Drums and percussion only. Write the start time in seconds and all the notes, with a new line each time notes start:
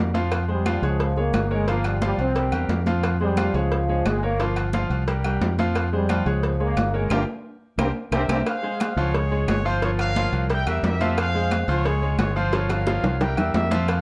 0.15 cowbell, high conga, low agogo
0.32 cowbell, high conga, low agogo, claves
0.49 high conga
0.66 cowbell, high conga, low timbale, low agogo, claves
0.83 high conga, low agogo
1.00 cowbell, high conga
1.17 high conga
1.33 cowbell, high conga, low timbale, low agogo, claves
1.51 high conga
1.68 cowbell, high conga, low agogo
1.84 cowbell, high conga, low agogo, claves
2.02 cowbell, high conga, low timbale
2.19 high conga, low agogo
2.36 cowbell, high conga, low agogo
2.52 high conga, low agogo, claves
2.69 cowbell, high conga, low timbale
2.86 cowbell, high conga, low agogo
3.03 cowbell, high conga, low agogo, claves
3.20 high conga
3.37 cowbell, high conga, low timbale, low agogo, claves
3.54 high conga, low agogo
3.71 cowbell, high conga
3.89 high conga
4.06 cowbell, high conga, low timbale, low agogo, claves
4.23 high conga
4.40 cowbell, high conga, low agogo
4.56 cowbell, high conga, low agogo, claves
4.73 cowbell, high conga, low timbale
4.91 high conga, low agogo
5.07 cowbell, high conga, low agogo
5.24 high conga, low agogo, claves
5.42 cowbell, high conga, low timbale
5.59 cowbell, high conga, low agogo
5.75 cowbell, high conga, low agogo, claves
5.93 high conga
6.09 cowbell, high conga, low timbale, low agogo, claves
6.26 high conga, low agogo
6.43 cowbell, high conga
6.60 high conga
6.77 cowbell, high conga, low timbale, low agogo, claves
6.94 high conga
7.10 cowbell, high conga, high timbale, claves
7.79 cowbell, high conga, high timbale, claves
8.12 cowbell, high conga, high timbale, claves
8.29 cowbell, high conga, high timbale, claves
8.46 cowbell, high conga, low agogo, claves
8.64 high conga
8.80 cowbell, high conga, low timbale, low agogo, claves
8.98 high conga, low agogo
9.14 cowbell, high conga
9.32 high conga
9.48 cowbell, high conga, low timbale, low agogo, claves
9.66 high conga
9.82 cowbell, high conga, low agogo
9.99 cowbell, high conga, low agogo, claves
10.16 cowbell, high conga, low timbale
10.33 high conga, low agogo
10.50 cowbell, high conga, low agogo
10.67 high conga, low agogo, claves
10.84 cowbell, high conga, low timbale
11.01 cowbell, high conga, low agogo
11.18 cowbell, high conga, low agogo, claves
11.35 high conga
11.51 cowbell, high conga, low timbale, low agogo, claves
11.68 high conga, low agogo
11.85 cowbell, high conga
12.02 high conga
12.19 cowbell, high conga, low timbale, low agogo, claves
12.36 high conga
12.53 cowbell, high bongo, high conga, low agogo
12.69 cowbell, high bongo, high conga, low agogo, claves
12.87 cowbell, high bongo, high conga, low timbale
13.04 low bongo, low agogo
13.21 cowbell, low bongo, high conga, low agogo
13.37 low bongo, high conga, low agogo, claves
13.54 cowbell, high conga, low timbale
13.71 cowbell, low bongo, high conga, low agogo
13.88 cowbell, high conga, low agogo, claves